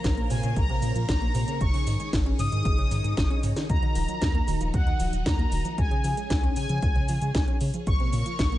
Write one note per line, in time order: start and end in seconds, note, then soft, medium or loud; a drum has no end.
0.00 1.59 A#3 medium
0.00 1.59 A#4 medium
0.00 1.59 C5 medium
0.00 3.65 C#5 medium
0.00 1.59 F5 medium
0.00 0.27 A#5 medium
0.04 0.23 A#1 loud
0.04 kick loud
0.04 snare loud
0.04 closed hi-hat medium
0.04 cabasa soft
0.17 0.24 A#3 loud
0.17 closed hi-hat soft
0.30 0.40 A#2 medium
0.30 0.37 C3 loud
0.30 0.55 G#5 medium
0.30 open hi-hat loud
0.30 cabasa medium
0.43 0.53 A#2 loud
0.43 0.55 C#3 loud
0.43 closed hi-hat medium
0.43 cabasa soft
0.56 0.76 A#1 medium
0.56 1.07 A#5 loud
0.56 kick loud
0.56 closed hi-hat medium
0.56 cabasa soft
0.69 0.81 C3 loud
0.69 closed hi-hat soft
0.82 0.92 A#2 loud
0.82 0.95 C#3 medium
0.82 open hi-hat loud
0.82 cabasa medium
0.95 1.05 A#2 medium
0.95 1.07 F3 medium
0.95 closed hi-hat medium
0.95 cabasa soft
1.09 1.28 A#1 medium
1.09 1.62 A#5 loud
1.09 kick loud
1.09 snare loud
1.09 closed hi-hat medium
1.09 cabasa soft
1.22 1.28 A#3 loud
1.22 closed hi-hat soft
1.35 1.44 A#2 loud
1.35 1.41 C3 loud
1.35 open hi-hat loud
1.35 cabasa medium
1.48 1.59 C#3 loud
1.48 closed hi-hat medium
1.48 cabasa soft
1.61 1.70 G#1 loud
1.61 5.74 D#4 medium
1.61 3.67 G#4 medium
1.61 2.09 C#6 loud
1.61 kick loud
1.61 closed hi-hat medium
1.61 cabasa soft
1.74 1.85 C#3 loud
1.74 open hi-hat medium
1.87 1.97 G#2 loud
1.87 1.99 D#3 medium
1.87 open hi-hat loud
1.87 cabasa medium
2.00 2.11 G#3 medium
2.00 closed hi-hat medium
2.00 cabasa soft
2.13 2.32 G#1 medium
2.13 kick loud
2.13 snare loud
2.13 closed hi-hat medium
2.13 cabasa soft
2.26 2.33 C#4 loud
2.26 closed hi-hat soft
2.39 2.49 G#2 loud
2.39 2.46 C#3 loud
2.39 3.40 D#6 loud
2.39 open hi-hat loud
2.39 cabasa medium
2.52 2.62 G#2 loud
2.52 2.63 D#3 loud
2.52 closed hi-hat medium
2.52 cabasa soft
2.65 2.84 G#1 medium
2.65 kick loud
2.65 closed hi-hat medium
2.65 cabasa soft
2.78 2.89 C#3 loud
2.78 closed hi-hat soft
2.91 3.01 G#2 medium
2.91 3.04 D#3 medium
2.91 open hi-hat loud
2.91 cabasa medium
3.04 3.14 G#2 medium
3.04 3.15 G#3 medium
3.04 closed hi-hat medium
3.04 cabasa soft
3.17 3.27 G#1 medium
3.17 kick loud
3.17 snare loud
3.17 closed hi-hat medium
3.17 cabasa soft
3.30 3.37 C#4 loud
3.30 closed hi-hat soft
3.43 3.53 G#2 loud
3.43 3.50 C#3 loud
3.43 open hi-hat loud
3.43 cabasa medium
3.56 3.68 D#3 loud
3.56 snare medium
3.56 closed hi-hat medium
3.56 cabasa soft
3.69 3.79 D#2 loud
3.69 5.76 F#4 medium
3.69 4.70 A#5 loud
3.69 kick loud
3.69 closed hi-hat medium
3.69 cabasa soft
3.82 3.94 D#3 loud
3.82 closed hi-hat soft
3.95 4.05 D#1 loud
3.95 4.08 F3 medium
3.95 open hi-hat loud
3.95 cabasa medium
4.08 4.20 F#3 medium
4.08 closed hi-hat medium
4.08 cabasa soft
4.22 4.41 D#2 medium
4.22 kick loud
4.22 snare loud
4.22 closed hi-hat medium
4.22 cabasa soft
4.35 4.41 A#3 loud
4.35 closed hi-hat soft
4.48 4.57 D#1 medium
4.48 4.54 D#3 loud
4.48 open hi-hat loud
4.48 cabasa medium
4.61 4.70 D#1 loud
4.61 4.72 F3 loud
4.61 closed hi-hat medium
4.61 cabasa soft
4.74 4.93 D#2 medium
4.74 5.28 F#5 loud
4.74 kick loud
4.74 closed hi-hat medium
4.74 cabasa soft
4.87 4.98 D#3 loud
4.87 closed hi-hat soft
5.00 5.09 D#1 loud
5.00 5.12 F3 medium
5.00 open hi-hat loud
5.00 cabasa medium
5.13 5.22 D#1 medium
5.13 5.24 F#3 medium
5.13 closed hi-hat medium
5.13 cabasa soft
5.26 5.45 D#2 medium
5.26 5.80 A#5 loud
5.26 kick loud
5.26 snare loud
5.26 closed hi-hat medium
5.26 cabasa soft
5.39 5.46 A#3 loud
5.39 closed hi-hat soft
5.52 5.62 D#1 loud
5.52 5.59 D#3 loud
5.52 open hi-hat loud
5.52 cabasa medium
5.65 5.76 F3 loud
5.65 closed hi-hat medium
5.65 cabasa soft
5.78 5.88 C#2 loud
5.78 7.85 C#4 medium
5.78 7.85 G#4 medium
5.78 6.55 G#5 loud
5.78 kick loud
5.78 closed hi-hat medium
5.78 cabasa soft
5.91 6.02 C#3 loud
5.91 closed hi-hat soft
6.04 6.14 C#3 loud
6.04 6.17 F3 medium
6.04 open hi-hat loud
6.04 cabasa medium
6.17 6.29 G#3 medium
6.17 closed hi-hat medium
6.17 cabasa soft
6.30 6.49 C#2 medium
6.30 kick loud
6.30 snare loud
6.30 closed hi-hat medium
6.30 cabasa soft
6.43 6.50 C#4 loud
6.43 closed hi-hat soft
6.56 6.63 C#3 loud
6.56 6.66 C#3 medium
6.56 7.57 G#5 loud
6.56 open hi-hat loud
6.56 cabasa medium
6.69 6.79 C#3 loud
6.69 6.81 F3 loud
6.69 closed hi-hat medium
6.69 cabasa soft
6.82 7.02 C#2 medium
6.82 kick loud
6.82 closed hi-hat medium
6.82 cabasa soft
6.96 7.07 C#3 loud
6.96 closed hi-hat soft
7.08 7.18 C#3 medium
7.08 7.21 F3 medium
7.08 open hi-hat loud
7.08 cabasa medium
7.22 7.31 C#3 medium
7.22 7.33 G#3 medium
7.22 closed hi-hat medium
7.22 cabasa soft
7.35 7.44 C#2 loud
7.35 kick loud
7.35 snare loud
7.35 closed hi-hat medium
7.35 cabasa soft
7.48 7.54 C#4 loud
7.48 closed hi-hat soft
7.61 7.68 C#3 loud
7.61 7.70 C#3 medium
7.61 open hi-hat loud
7.61 cabasa medium
7.74 7.85 F3 loud
7.74 closed hi-hat medium
7.74 cabasa soft
7.87 7.96 A#1 loud
7.87 8.58 A#3 medium
7.87 8.58 A#4 medium
7.87 8.58 C#5 medium
7.87 8.58 F5 medium
7.87 8.58 C#6 loud
7.87 kick loud
7.87 closed hi-hat medium
7.87 cabasa soft
8.00 8.11 C3 loud
8.00 closed hi-hat soft
8.13 8.23 A#2 loud
8.13 8.25 C#3 medium
8.13 open hi-hat loud
8.13 cabasa medium
8.26 8.37 F3 medium
8.26 closed hi-hat medium
8.26 cabasa soft
8.39 8.58 A#1 medium
8.39 kick loud
8.39 snare loud
8.39 closed hi-hat medium
8.39 cabasa soft
8.52 8.58 A#3 loud
8.52 closed hi-hat soft